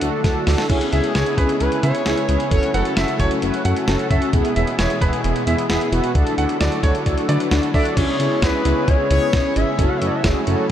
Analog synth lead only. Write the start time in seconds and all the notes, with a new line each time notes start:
Already playing: F#5
0.92 G#4
1.15 G#4
1.60 B4
1.83 C#5
2.51 C#5
2.74 A4
7.74 D5
7.90 D5
7.97 C#5
8.42 B4
8.88 C#5
9.11 C#5
9.56 E5
9.88 F#5
9.97 E5
10.06 D5
10.15 E5